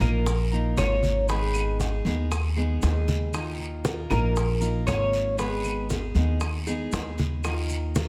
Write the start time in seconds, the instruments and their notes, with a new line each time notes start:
0.00 upright bass A#1, steel-string acoustic guitar A#3 D#4 F4 A#4, cuban tres A#4, high conga, low conga, short guiro, claves, maracas
0.26 muted steel-string acoustic guitar stroke, high bongo, high conga, long guiro, maracas
0.52 steel-string acoustic guitar A#3 D#4 F4 A#4, high conga
0.77 upright bass G#1, steel-string acoustic guitar A#3 D#4 F4 A#4, cuban tres C#5, high bongo, low bongo, high conga, short guiro, claves, maracas
1.03 high conga, short guiro, maracas
1.28 steel-string acoustic guitar D#3 G#3 B3 D#4 G#4, cuban tres B4, high bongo, high conga, long guiro, maracas
1.54 high bongo, high conga, claves, maracas
1.80 steel-string acoustic guitar G#3 B3 D#4 G#4, high bongo, high conga, short guiro, maracas
2.05 upright bass D#2, steel-string acoustic guitar G#3 B3 D#4 G#4, high bongo, high conga, short guiro, maracas
2.31 muted steel-string acoustic guitar stroke, high bongo, high conga, long guiro, claves, maracas
2.56 steel-string acoustic guitar G#3 B3 D#4 G#4, high bongo, high conga
2.82 upright bass D#2, steel-string acoustic guitar G#3 B3 D#4 G#4, high bongo, low bongo, high conga, short guiro, maracas
3.08 high conga, short guiro, maracas
3.33 steel-string acoustic guitar D#3 A#3 D#4 F4 A#4, high bongo, high conga, long guiro, claves, maracas
3.59 high conga
3.85 steel-string acoustic guitar A#3 D#4 F4 A#4, high bongo, high conga, short guiro, maracas
4.10 upright bass A#1, steel-string acoustic guitar A#3 D#4 F4 A#4, cuban tres A#4, high conga, low conga, short guiro, claves, maracas
4.36 muted steel-string acoustic guitar stroke, high bongo, high conga, long guiro, maracas
4.60 steel-string acoustic guitar A#3 D#4 F4 A#4, high conga, maracas
4.86 upright bass G#1, steel-string acoustic guitar A#3 D#4 F4 A#4, cuban tres C#5, high bongo, low bongo, high conga, short guiro, claves, maracas
5.13 short guiro, maracas
5.37 steel-string acoustic guitar D#3 G#3 B3 D#4 G#4, cuban tres B4, high bongo, high conga, long guiro, maracas
5.64 high bongo, high conga, claves, maracas
5.89 steel-string acoustic guitar G#3 B3 D#4 G#4, high bongo, high conga, short guiro, maracas
6.15 upright bass D#2, steel-string acoustic guitar G#3 B3 D#4 G#4, high bongo, high conga, short guiro, maracas
6.40 muted steel-string acoustic guitar stroke, high bongo, high conga, long guiro, claves, maracas
6.67 steel-string acoustic guitar G#3 B3 D#4 G#4, high bongo, high conga, maracas
6.92 upright bass D#2, steel-string acoustic guitar G#3 B3 D#4 G#4, high bongo, low bongo, high conga, short guiro, maracas
7.18 high conga, short guiro, maracas
7.44 steel-string acoustic guitar D#3 A#3 D#4 F4 A#4, high bongo, high conga, long guiro, claves, maracas
7.69 high conga, maracas
7.95 steel-string acoustic guitar A#3 D#4 F4 A#4, high bongo, high conga, short guiro, maracas